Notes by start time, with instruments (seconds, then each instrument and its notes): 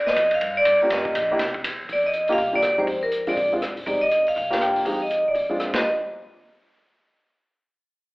Already playing: upright bass D#2
0.07 vibraphone D#5, snare
0.16 upright bass F2, kick, hi-hat pedal, ride
0.31 vibraphone F5, ride
0.41 upright bass G2, kick, ride
0.57 vibraphone D5
0.65 upright bass G2, kick, hi-hat pedal, ride
0.81 grand piano A#3 C#4 F4 G4, vibraphone D5
0.90 upright bass G1, vibraphone D#5, kick, snare, ride
1.05 kick
1.15 upright bass A#1, kick, hi-hat pedal, ride
1.31 grand piano A#3 D4 E4 G4
1.39 upright bass C2, kick, snare, ride
1.54 kick
1.64 upright bass E2, kick, hi-hat pedal, ride
1.89 upright bass F2, vibraphone D5, kick, open hi-hat
2.06 vibraphone D#5
2.13 closed hi-hat
2.28 upright bass C#2, grand piano A#3 D4 F4 G4, open hi-hat
2.33 vibraphone F5
2.38 upright bass C2, kick, open hi-hat
2.53 grand piano A#3 D4 F4 G4, vibraphone D5
2.62 cross-stick, closed hi-hat
2.78 grand piano G#3 C4 D#4 G4, vibraphone C5, muted upright bass stroke
2.87 upright bass F2, kick, open hi-hat
3.03 vibraphone A#4
3.12 closed hi-hat
3.27 grand piano G#3 C4 D4 F4, vibraphone D5, open hi-hat
3.37 upright bass A#1, kick, open hi-hat
3.52 grand piano G#3 C4 D4 F4
3.62 cross-stick, closed hi-hat
3.70 upright bass C2
3.77 upright bass G1, open hi-hat
3.86 upright bass F1, grand piano G#3 C4 D#4 G4, vibraphone D5, kick, open hi-hat
4.01 vibraphone D#5
4.11 closed hi-hat
4.26 vibraphone F5, open hi-hat
4.36 upright bass C2, vibraphone F5, kick, open hi-hat
4.50 grand piano A#3 D4 F4 G4, snare
4.61 vibraphone G5, cross-stick, closed hi-hat
4.76 open hi-hat
4.85 upright bass F2, grand piano G#3 C4 D#4 G4, vibraphone F5, kick, open hi-hat
5.02 vibraphone D#5
5.10 closed hi-hat
5.25 upright bass C2, vibraphone D5
5.35 upright bass A#1, kick, open hi-hat
5.49 grand piano G#3 C4 D4 F4
5.60 cross-stick, closed hi-hat
5.74 upright bass D#2, grand piano G3 A#3 D4 F4, vibraphone D#5, kick, snare, crash